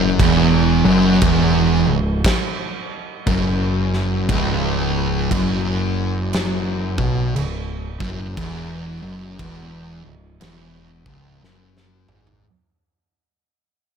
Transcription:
0.00 0.17 F#1 loud
0.00 0.19 F#2 medium
0.19 0.81 E1 medium
0.19 0.84 E2 loud
0.19 kick loud
0.19 crash medium
0.85 1.20 F#1 loud
0.85 1.22 F#2 loud
1.22 1.83 E1 medium
1.22 1.86 E2 loud
1.22 kick loud
1.22 crash medium
1.87 2.22 C#1 medium
1.87 2.17 C#2 medium
2.25 kick loud
2.25 snare loud
2.25 crash medium
3.27 4.25 F#1 loud
3.27 4.28 F#2 loud
3.27 kick loud
3.27 crash medium
3.93 snare soft
4.29 5.28 C#1 loud
4.29 5.30 C#2 loud
4.29 kick loud
4.29 crash medium
5.31 6.95 F#1 medium
5.31 6.97 F#2 medium
5.31 kick loud
5.31 crash medium
6.33 snare loud
6.33 crash medium
6.98 7.33 B1 medium
6.98 7.35 B2 medium
6.98 kick loud
7.36 7.97 C#1 medium
7.36 7.88 C#2 medium
7.36 crash medium
8.00 8.35 F#1 medium
8.00 8.36 F#2 loud
8.00 kick loud
8.00 snare soft
8.37 8.99 E1 medium
8.37 9.01 E2 loud
8.37 kick loud
8.37 crash medium
9.02 9.37 F#1 loud
9.02 9.39 F#2 loud
9.39 10.01 E1 medium
9.39 10.03 E2 medium
9.39 kick loud
9.39 crash medium
10.04 10.39 C#1 medium
10.04 10.34 C#2 medium
10.41 11.03 E1 loud
10.41 11.04 E2 loud
10.41 snare loud
10.41 crash medium
11.06 11.41 C#1 medium
11.06 11.42 C#2 loud
11.06 kick loud
11.43 12.04 F#1 medium
11.43 12.06 F#2 medium
11.43 snare medium
11.77 snare medium
12.08 12.43 G#1 medium
12.08 12.45 G#2 medium
12.08 mid tom medium
12.27 floor tom medium

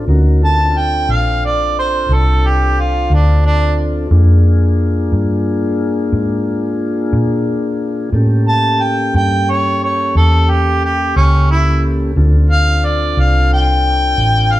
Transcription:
0.08 1.06 D2 medium
0.08 0.42 C#4 medium
0.08 0.43 D#4 medium
0.08 0.42 F#4 medium
0.08 0.42 A#4 medium
0.42 4.08 C4 medium
0.42 4.07 D4 medium
0.42 4.07 F4 medium
0.42 4.07 A4 medium
0.42 0.79 A5 medium
0.77 1.13 G5 medium
1.09 2.06 A#1 medium
1.09 1.43 F5 medium
1.45 1.77 D5 medium
1.79 2.15 C5 medium
2.09 3.07 C2 medium
2.13 2.48 A4 medium
2.47 2.82 G4 medium
2.80 3.11 F4 medium
3.10 4.08 D2 medium
3.14 3.45 D4 medium
3.46 3.77 D4 medium
4.11 5.08 F2 medium
4.11 8.10 A#3 medium
4.11 8.10 D4 medium
4.11 8.09 F4 medium
4.11 8.10 G#4 medium
5.12 6.09 G2 medium
6.12 7.10 G#2 medium
7.13 8.10 A#2 medium
8.12 9.10 A2 medium
8.12 12.12 A#3 medium
8.12 12.12 C#4 medium
8.12 12.12 G4 medium
8.12 12.12 A4 medium
8.48 8.84 A5 medium
8.82 9.14 G5 medium
9.14 10.12 G2 medium
9.14 9.52 G5 medium
9.51 9.82 C#5 medium
9.84 10.15 C#5 medium
10.15 11.12 E2 medium
10.15 10.51 A4 medium
10.50 10.81 G4 medium
10.85 11.16 G4 medium
11.16 12.13 C#2 medium
11.16 11.48 C#4 medium
11.51 11.82 E4 medium
12.16 13.14 D2 medium
12.16 14.60 C4 medium
12.16 14.60 D4 medium
12.16 14.60 F4 medium
12.16 14.60 A4 medium
12.50 12.86 F5 medium
12.85 13.21 D5 medium
13.17 14.14 C2 medium
13.17 13.51 F5 medium
13.53 14.54 G5 medium
14.18 14.60 A1 medium
14.52 14.60 F5 medium

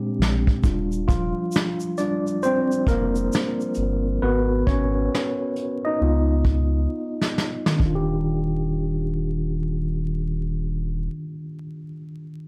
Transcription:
0.00 0.10 A#2 medium
0.00 0.11 G#3 medium
0.00 0.12 C4 medium
0.00 0.13 D4 medium
0.00 0.14 G4 medium
0.18 0.45 A#1 medium
0.18 snare medium
0.47 kick medium
0.64 1.33 D#1 medium
0.64 1.28 G3 medium
0.64 1.28 D4 soft
0.64 1.07 F4 medium
0.64 kick loud
0.64 shaker medium
0.92 shaker soft
1.08 1.95 F3 medium
1.08 1.98 F4 medium
1.08 kick medium
1.08 closed hi-hat medium
1.08 shaker soft
1.52 snare loud
1.52 shaker medium
1.80 shaker soft
1.98 2.39 G3 soft
1.98 2.41 D4 medium
1.98 2.39 F4 soft
1.98 2.44 D5 medium
1.98 closed hi-hat medium
1.98 shaker soft
2.27 shaker soft
2.43 2.86 C4 medium
2.43 2.89 C5 medium
2.43 shaker medium
2.72 shaker soft
2.87 3.29 F1 loud
2.87 4.19 A#3 medium
2.87 4.21 A#4 medium
2.87 kick medium
2.87 closed hi-hat medium
2.87 shaker soft
3.16 shaker soft
3.33 snare medium
3.33 shaker medium
3.61 shaker soft
3.75 4.19 G1 medium
3.75 closed hi-hat medium
3.75 shaker soft
4.22 4.64 G#1 loud
4.22 4.65 B3 medium
4.22 5.53 F#4 medium
4.22 5.52 A#4 medium
4.22 4.64 B4 medium
4.67 5.09 G#1 medium
4.67 5.81 C#4 medium
4.67 5.88 C#5 loud
4.67 kick medium
4.67 closed hi-hat medium
5.15 snare medium
5.56 closed hi-hat medium
5.85 6.01 D#4 medium
5.85 7.31 D#5 medium
6.01 6.43 C#2 medium
6.01 6.65 B3 medium
6.01 6.65 D#4 medium
6.01 6.66 F4 medium
6.45 6.87 C#2 loud
6.45 kick medium
6.45 closed hi-hat medium
7.21 snare medium
7.38 snare medium
7.66 10.95 D#3 medium
7.66 snare medium
7.76 11.08 D#1 medium
7.76 11.04 D4 medium
7.76 kick loud
7.86 11.14 F4 medium
7.95 11.23 G4 medium

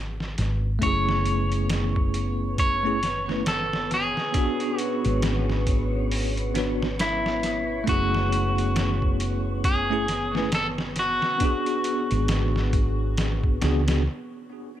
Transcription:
0.00 0.38 G#1 medium
0.20 snare soft
0.38 0.78 G#1 medium
0.38 snare soft
0.38 closed hi-hat medium
0.79 4.12 F#1 loud
0.79 2.77 A3 medium
0.79 14.05 B3 medium
0.79 2.78 C#4 medium
0.79 14.06 C#4 medium
0.79 14.05 B4 medium
0.79 2.58 C#5 loud
0.79 kick medium
0.79 closed hi-hat medium
0.83 2.79 E4 medium
0.83 2.81 G#4 medium
0.83 14.06 C#5 medium
1.09 snare medium
1.26 closed hi-hat medium
1.52 closed hi-hat soft
1.70 snare loud
1.70 closed hi-hat medium
1.96 kick medium
2.14 closed hi-hat medium
2.58 3.48 C#5 loud
2.58 kick loud
2.58 closed hi-hat medium
2.83 2.98 A3 medium
2.83 2.99 C#4 medium
2.83 2.99 E4 medium
2.83 3.00 G#4 medium
3.03 snare soft
3.03 closed hi-hat medium
3.29 3.43 A3 medium
3.29 3.43 C#4 medium
3.29 3.43 E4 medium
3.29 3.44 B4 medium
3.29 snare soft
3.46 3.93 A4 medium
3.46 snare loud
3.46 closed hi-hat medium
3.73 snare medium
3.91 4.80 G#4 medium
3.91 snare soft
3.91 closed hi-hat medium
4.17 snare soft
4.32 6.50 B3 loud
4.32 6.51 D4 medium
4.32 kick loud
4.32 closed hi-hat medium
4.37 6.52 F#4 medium
4.37 6.53 G#4 loud
4.60 closed hi-hat soft
4.79 5.21 F#4 medium
4.79 closed hi-hat medium
5.05 7.85 G#1 loud
5.05 closed hi-hat soft
5.22 snare loud
5.22 closed hi-hat medium
5.50 snare soft
5.67 kick medium
5.67 closed hi-hat medium
6.12 open hi-hat medium
6.37 closed hi-hat soft
6.54 6.85 B3 medium
6.54 6.86 D4 medium
6.54 6.86 F#4 medium
6.54 6.87 B4 medium
6.54 snare soft
6.54 closed hi-hat medium
6.83 snare medium
6.99 7.85 E4 medium
6.99 snare loud
6.99 closed hi-hat medium
7.26 snare medium
7.43 snare soft
7.43 closed hi-hat medium
7.84 11.18 F#1 loud
7.84 9.82 A3 medium
7.84 9.84 C#4 medium
7.84 kick loud
7.84 closed hi-hat medium
7.89 9.85 E4 medium
7.89 9.64 F#4 loud
7.89 9.86 G#4 loud
8.14 snare medium
8.32 closed hi-hat medium
8.58 closed hi-hat soft
8.76 snare loud
8.76 closed hi-hat medium
9.02 kick medium
9.20 closed hi-hat medium
9.64 10.54 G#4 loud
9.64 kick loud
9.64 closed hi-hat medium
9.90 10.04 A3 medium
9.90 10.05 C#4 medium
9.90 10.05 E4 medium
9.90 10.06 G#4 loud
10.08 snare soft
10.08 closed hi-hat medium
10.34 10.48 A3 medium
10.34 10.49 C#4 medium
10.34 10.49 E4 medium
10.34 10.50 B4 medium
10.34 snare soft
10.52 10.66 A4 loud
10.52 snare loud
10.52 closed hi-hat medium
10.78 snare medium
10.96 14.03 F#4 medium
10.96 snare soft
10.96 closed hi-hat medium
11.22 snare soft
11.38 13.56 B3 loud
11.38 13.57 D4 medium
11.38 kick loud
11.38 closed hi-hat medium
11.43 13.58 F#4 medium
11.43 13.59 G#4 loud
11.66 closed hi-hat soft
11.84 closed hi-hat medium
12.11 13.62 G#1 medium
12.11 closed hi-hat soft
12.28 snare loud
12.28 closed hi-hat medium
12.56 snare soft
12.73 kick loud
12.73 closed hi-hat medium
13.18 snare loud
13.18 closed hi-hat medium
13.44 kick medium
13.61 14.06 C#2 medium
13.61 13.82 B3 medium
13.61 13.82 D4 medium
13.61 13.83 F#4 medium
13.61 13.83 G#4 loud
13.61 snare loud
13.61 closed hi-hat medium
13.87 14.01 B3 medium
13.87 14.02 D4 medium
13.87 14.02 F#4 medium
13.87 14.03 G#4 medium
13.87 snare loud
13.87 closed hi-hat medium

